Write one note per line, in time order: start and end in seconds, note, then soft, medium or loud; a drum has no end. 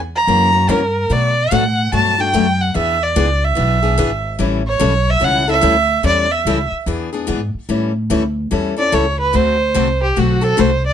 0.00 0.26 E2 medium
0.16 0.72 A#5 loud
0.27 0.67 F#2 medium
0.27 0.49 C#3 medium
0.27 0.49 E3 medium
0.27 0.49 A#3 medium
0.27 0.49 C#4 medium
0.27 0.50 F#4 medium
0.52 0.68 A#3 soft
0.52 0.68 C#4 soft
0.52 0.67 F#4 medium
0.68 1.08 G2 medium
0.68 0.80 C#3 medium
0.68 0.80 E3 medium
0.68 0.80 A#3 medium
0.68 0.80 C#4 medium
0.68 0.81 F#4 medium
0.68 1.14 A#4 medium
1.10 1.31 B2 medium
1.10 1.50 B2 medium
1.10 1.32 F#3 medium
1.10 1.32 A3 medium
1.10 1.32 D4 medium
1.10 1.32 F#4 medium
1.10 1.55 D5 medium
1.51 1.91 A2 medium
1.51 1.63 B2 medium
1.51 1.63 F#3 medium
1.51 1.63 A3 medium
1.51 1.63 D4 medium
1.51 1.63 F#4 medium
1.51 1.93 F#5 medium
1.93 2.32 G2 medium
1.93 2.14 B2 medium
1.93 2.14 F#3 medium
1.93 2.14 A3 medium
1.93 2.15 D4 medium
1.93 2.15 F#4 medium
1.93 2.22 A5 medium
2.18 2.33 A3 soft
2.18 2.33 D4 soft
2.18 2.33 F#4 medium
2.18 2.62 G5 medium
2.34 2.74 F#2 medium
2.34 2.45 B2 medium
2.34 2.45 F#3 medium
2.34 2.45 A3 medium
2.34 2.45 D4 medium
2.34 2.46 F#4 loud
2.61 2.75 F#5 medium
2.74 3.15 E2 medium
2.74 2.96 E3 medium
2.74 2.97 B3 medium
2.74 2.97 D4 medium
2.74 2.97 G#4 medium
2.74 3.04 E5 medium
3.03 3.46 D5 medium
3.16 3.56 C#2 medium
3.16 3.27 E3 medium
3.16 3.27 B3 medium
3.16 3.28 D4 medium
3.16 3.28 G#4 loud
3.44 4.26 E5 medium
3.55 3.98 B1 medium
3.55 3.78 E3 medium
3.55 3.78 B3 medium
3.55 3.78 D4 medium
3.55 3.79 G#4 medium
3.83 3.97 B3 soft
3.83 3.98 D4 soft
3.83 3.97 G#4 medium
3.98 4.38 G#1 medium
3.98 4.09 E3 medium
3.98 4.09 B3 medium
3.98 4.10 D4 medium
3.98 4.10 G#4 loud
4.39 4.79 A1 medium
4.39 4.61 E3 medium
4.39 4.61 G3 medium
4.39 4.61 C#4 medium
4.39 4.61 E4 medium
4.39 4.61 A4 medium
4.67 5.11 C#5 medium
4.79 5.21 B1 medium
4.79 4.92 E3 medium
4.79 4.92 G3 medium
4.79 4.92 C#4 medium
4.79 4.92 E4 medium
4.79 4.92 A4 medium
5.10 5.25 E5 loud
5.20 5.62 C#2 medium
5.20 5.43 E3 medium
5.20 5.43 G3 medium
5.20 5.43 C#4 medium
5.20 5.43 E4 medium
5.20 5.44 A4 medium
5.20 5.49 F#5 loud
5.48 5.61 C#4 soft
5.48 5.61 E4 medium
5.48 5.62 A4 medium
5.48 6.02 E5 loud
5.61 6.03 D2 medium
5.61 5.74 E3 medium
5.61 5.74 G3 medium
5.61 5.74 C#4 medium
5.61 5.74 E4 medium
5.61 5.75 A4 medium
6.03 6.44 E2 medium
6.03 6.25 E3 medium
6.03 6.26 G3 medium
6.03 6.26 C#4 medium
6.03 6.26 E4 medium
6.03 6.26 A4 medium
6.03 6.33 D5 loud
6.31 6.72 E5 medium
6.45 6.70 C#2 medium
6.45 6.58 E3 medium
6.45 6.58 G3 medium
6.45 6.58 C#4 medium
6.45 6.58 E4 medium
6.45 6.58 A4 medium
6.71 muted upright bass stroke soft
6.86 7.27 E2 medium
6.86 7.08 E3 medium
6.86 7.09 B3 medium
6.86 7.09 D4 medium
6.86 7.09 G#4 medium
7.13 7.26 B3 soft
7.13 7.27 D4 soft
7.13 7.27 G#4 soft
7.27 7.53 G#2 medium
7.27 7.39 E3 medium
7.27 7.39 B3 medium
7.27 7.40 D4 medium
7.27 7.40 G#4 medium
7.54 muted upright bass stroke soft
7.69 8.09 A2 medium
7.69 7.91 E3 medium
7.69 7.91 G3 medium
7.69 7.91 C#4 medium
7.69 7.91 E4 medium
7.69 7.91 A4 medium
8.10 8.50 D2 medium
8.10 8.22 E3 medium
8.10 8.22 G3 medium
8.10 8.22 C#4 medium
8.10 8.22 E4 medium
8.10 8.22 A4 medium
8.51 8.92 E2 medium
8.51 8.73 E3 medium
8.51 8.73 G3 medium
8.51 8.73 C#4 medium
8.51 8.74 E4 medium
8.51 8.74 A4 medium
8.77 8.91 C#4 soft
8.77 8.91 E4 soft
8.77 8.92 A4 medium
8.77 8.96 D5 medium
8.92 9.33 C#2 medium
8.92 9.04 E3 medium
8.92 9.04 G3 medium
8.92 9.04 C#4 medium
8.92 9.04 E4 medium
8.92 9.05 A4 medium
8.92 9.19 C#5 medium
9.20 9.37 B4 medium
9.33 9.74 D2 medium
9.33 9.55 D3 medium
9.33 9.56 A3 medium
9.33 9.56 C4 medium
9.33 9.56 F#4 medium
9.33 9.56 A4 medium
9.33 10.02 C5 medium
9.74 10.16 C2 medium
9.74 9.87 D3 medium
9.74 9.87 A3 medium
9.74 9.87 C4 medium
9.74 9.87 F#4 medium
9.74 9.87 A4 medium
10.03 10.20 G4 medium
10.16 10.57 B1 medium
10.16 10.39 D3 medium
10.16 10.39 A3 medium
10.16 10.39 C4 medium
10.16 10.39 F#4 medium
10.16 10.45 F#4 medium
10.16 10.39 A4 medium
10.41 10.56 C4 soft
10.41 10.57 F#4 soft
10.41 10.57 A4 soft
10.41 10.61 A4 medium
10.57 10.93 C2 medium
10.57 10.69 D3 medium
10.57 10.70 A3 medium
10.57 10.70 C4 medium
10.57 10.70 F#4 medium
10.57 10.70 A4 medium
10.57 10.85 C5 medium
10.87 10.93 D5 medium